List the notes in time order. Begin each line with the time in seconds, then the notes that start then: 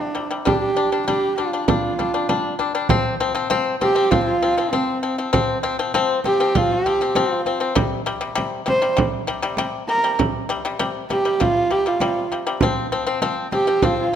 Already playing: D4
0.15 C3 G3, frame drum
0.31 C3 G3
0.45 G3 D4 G4, frame drum
0.60 G4
0.76 G3 D4, frame drum
0.92 G3 D4
1.07 G3 D4 G4, frame drum
1.36 G3 D4 F4, frame drum
1.53 G3 D4
1.67 G3 D4 F4, frame drum
1.99 G3 D4, frame drum
2.14 G3 D4
2.29 G3 D4, frame drum
2.59 G3 D4, frame drum
2.75 G3 D4
2.89 F3 C4, frame drum
3.20 F3 C4, frame drum
3.35 F3 C4
3.50 F3 C4, frame drum
3.81 F3 C4 G4, frame drum
3.95 F3 C4
4.11 F3 C4 F4, frame drum
4.24 F4
4.42 F3 C4
4.58 F3 C4
4.70 F3 C4, frame drum
5.03 F3 C4
5.18 F3 C4
5.33 F3 C4, frame drum
5.63 F3 C4, frame drum
5.79 F3 C4
5.94 F3 C4, frame drum
6.24 F3 C4 G4, frame drum
6.40 F3 C4
6.55 F3 C4 F4, frame drum
6.72 G4
6.85 F3 C4, frame drum
7.01 F3 C4
7.15 F3 C4 F4, frame drum
7.46 F3 C4, frame drum
7.60 F3 C4
7.75 C3 G3, frame drum
8.06 C3 G3, frame drum
8.21 C3 G3
8.35 C3 G3, frame drum
8.66 C3 G3 C5, frame drum
8.82 C3 G3
8.97 C3 G3, frame drum
9.27 C3 G3, frame drum
9.42 C3 G3
9.57 C3 G3, frame drum
9.88 C3 G3 A#4
10.04 C3 G3
10.19 C3 G3, frame drum
10.49 C3 G3, frame drum
10.65 C3 G3
10.79 C3 G3, frame drum
11.10 C3 G3 G4, frame drum
11.25 C3 G3
11.40 C3 G3 F4, frame drum
11.70 C3 G3 G4, frame drum
11.86 C3 G3 F4
12.00 C3 G3, frame drum
12.32 C3 G3, frame drum
12.47 C3 G3
12.61 F3 C4, frame drum
12.92 F3 C4, frame drum
13.06 F3 C4
13.22 F3 C4, frame drum
13.52 F3 C4 G4, frame drum
13.67 F3 C4
13.82 F3 C4 F4, frame drum
14.00 F4